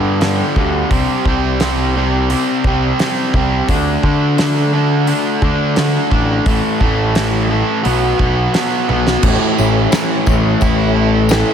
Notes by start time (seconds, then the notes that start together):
Already playing: G2 D3 G3
0.21 G2 D3 G3, snare, open hi-hat
0.56 D2 G2 D3 G3, kick
0.91 C2 C3 G3 C4, kick, open hi-hat
1.25 C2 C3 G3 C4, kick
1.60 C3 G3 C4, snare, open hi-hat
1.95 C3 G3 C4
2.30 C3 G3 C4, open hi-hat
2.64 C2 C3 G3 C4, kick
2.99 C3 G3 C4, snare, open hi-hat
3.34 C2 C3 G3 C4, kick
3.68 D2 D3 A3 D4, kick, open hi-hat
4.03 D3 A3 D4, kick
4.37 D3 A3 D4, snare, open hi-hat
4.72 D3 A3 D4
5.07 D3 A3 D4, open hi-hat
5.42 D3 A3 D4, kick
5.76 D3 A3 D4, snare, open hi-hat
6.11 A1 D3 A3 D4, kick
6.46 A1 A2 E3 A3, kick, open hi-hat
6.81 A1 A2 E3 A3, kick
7.15 A2 E3 A3, snare, open hi-hat
7.50 A2 E3 A3
7.84 B1 B2 F#3 B3, open hi-hat
8.19 B1 B2 F#3 B3, kick
8.54 B2 F#3 B3, snare, open hi-hat
8.89 B1 B2 F#3 B3, high tom
9.07 snare
9.21 A1 A2 E3 A3 E4 A4 C#5 E5, kick, crash, tambourine
9.57 A1 E3, tambourine
9.91 E3, snare, tambourine, crash
10.26 A1 A2 E3 A3, kick, tambourine
10.61 A1 E4, kick, tambourine, crash
10.96 A3
11.29 A2 E3, snare, tambourine, crash
11.33 A3